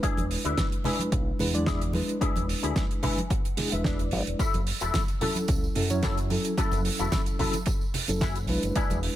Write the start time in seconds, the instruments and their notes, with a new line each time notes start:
Already playing: reed electric piano G#3 D4 E4 B4
0.03 clean electric guitar D4 E4 G#4, kick, closed hi-hat
0.17 fingered electric bass E1, closed hi-hat, high conga
0.31 open hi-hat
0.45 fingered electric bass D2, clean electric guitar D4 E4 B4, closed hi-hat
0.57 kick, snare, closed hi-hat, high conga
0.72 closed hi-hat
0.84 reed electric piano G#3 D4 E4 B4, clean electric guitar D4 E4 G#4, open hi-hat, low conga
0.99 closed hi-hat, high conga
1.12 fingered electric bass B1, muted clean electric guitar stroke, kick, closed hi-hat
1.39 fingered electric bass E2, reed electric piano G#3 D4 E4 B4, open hi-hat, low conga
1.53 reed electric piano G#3 D4 E4 D5, closed hi-hat, high conga
1.66 clean electric guitar D4 E4 G#4, kick, snare, closed hi-hat
1.81 closed hi-hat
1.93 reed electric piano G#3 D4 E4 B4, muted clean electric guitar stroke, open hi-hat, high conga
2.09 closed hi-hat
2.21 clean electric guitar D4 E4 G#4, muted fingered electric bass stroke, kick, closed hi-hat
2.36 fingered electric bass E1, closed hi-hat, high conga
2.49 open hi-hat
2.63 fingered electric bass D2, clean electric guitar D4 E4 G#4, closed hi-hat
2.76 kick, snare, closed hi-hat, high conga
2.91 closed hi-hat
3.02 reed electric piano G#3 D4 E4 B4, clean electric guitar D4 E4 F#4 G#5, kick, open hi-hat, low conga
3.18 closed hi-hat, high conga
3.30 clean electric guitar F#5, muted clean electric guitar stroke, kick, closed hi-hat
3.45 closed hi-hat
3.57 reed electric piano G#3 D4 E4 G#4, snare, open hi-hat, low conga
3.71 fingered electric bass E1, reed electric piano G#3 D4 E4 B4, clean electric guitar E5, closed hi-hat, high conga
3.84 clean electric guitar D4 E4 G#4 D5, kick, snare, closed hi-hat
3.99 closed hi-hat
4.11 fingered electric bass G#1, muted clean electric guitar stroke, open hi-hat, high conga
4.27 fingered electric bass E1, closed hi-hat
4.39 clean electric guitar E4 F#4 A4, kick, closed hi-hat, tambourine
4.54 fingered electric bass F#1, closed hi-hat, tambourine, high conga
4.67 open hi-hat
4.80 fingered electric bass E1, clean electric guitar E4 F#4 A4, closed hi-hat, tambourine
4.94 kick, snare, closed hi-hat, tambourine, high conga
5.08 closed hi-hat, tambourine
5.21 reed electric piano F#3 C#4 E4 A4, clean electric guitar E4 F#4 A4, open hi-hat, low conga
5.35 closed hi-hat, tambourine, high conga
5.48 fingered electric bass C#2, muted clean electric guitar stroke, kick, closed hi-hat, tambourine
5.64 tambourine
5.75 fingered electric bass F#2, reed electric piano F#3 C#4 E4 A4, open hi-hat, low conga
5.90 reed electric piano F#3 C#4 E4 C#5, closed hi-hat, tambourine, high conga
6.03 clean electric guitar E4 F#4 A4, kick, snare, closed hi-hat, tambourine
6.17 closed hi-hat, tambourine
6.29 reed electric piano F#3 C#4 E4 A4, muted clean electric guitar stroke, open hi-hat, high conga
6.44 closed hi-hat, tambourine
6.58 clean electric guitar E4 F#4 A4, muted fingered electric bass stroke, kick, closed hi-hat, tambourine
6.72 fingered electric bass F#1, closed hi-hat, tambourine, high conga
6.85 open hi-hat
6.99 fingered electric bass E1, clean electric guitar E4 F#4 A4, closed hi-hat, tambourine
7.12 kick, snare, closed hi-hat, tambourine, high conga
7.26 closed hi-hat, tambourine
7.39 reed electric piano F#3 C#4 E4 A4, clean electric guitar E4 F#4 A4, kick, open hi-hat, low conga
7.53 closed hi-hat, tambourine, high conga
7.66 muted clean electric guitar stroke, kick, closed hi-hat, tambourine
7.81 tambourine
7.94 open hi-hat, low conga
8.08 fingered electric bass F#1, reed electric piano F#3 C#4 E4 A4, closed hi-hat, tambourine, high conga
8.21 clean electric guitar E4 F#4 G#4, kick, snare, closed hi-hat, tambourine
8.36 closed hi-hat, tambourine
8.47 fingered electric bass B1, reed electric piano G#3 D4 E4 B4, muted clean electric guitar stroke, open hi-hat, high conga
8.63 fingered electric bass F#1, closed hi-hat, tambourine
8.76 clean electric guitar D4 E4 G#4, kick, closed hi-hat, tambourine
8.90 fingered electric bass E1, closed hi-hat, tambourine, high conga
9.03 open hi-hat